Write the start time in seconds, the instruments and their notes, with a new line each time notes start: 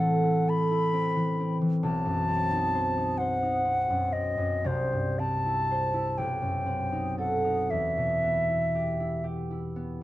Already playing: harp A2 E3 C4 E4, flute F#5
0.00 harp A4
0.24 harp E4
0.47 harp A4, flute B5
0.71 harp E4
0.93 harp C4
1.16 harp E3
1.40 harp C4
1.61 harp E3
1.83 harp B1, flute A5
2.06 harp F#2
2.28 harp C4
2.52 harp D#4
2.75 harp C5
2.97 harp D#4
3.18 harp C5, flute F#5
3.43 harp D#4
3.65 harp C4
3.90 harp F#2
4.12 harp C4, flute D#5
4.38 harp F#2
4.64 harp C2, flute C5
4.93 harp G2
5.19 harp C4, flute A5
5.46 harp E4
5.71 harp C5
5.94 harp E4
6.18 harp B1, flute G5
6.42 harp F#2
6.66 harp C4
6.92 harp D#4
7.18 harp A4, flute F#5
7.44 harp D#4
7.70 harp E2, flute E5
7.98 harp B2
8.23 harp B3
8.50 harp E4
8.75 harp G4
9.00 harp E4
9.24 harp G4
9.51 harp E4
9.76 harp B3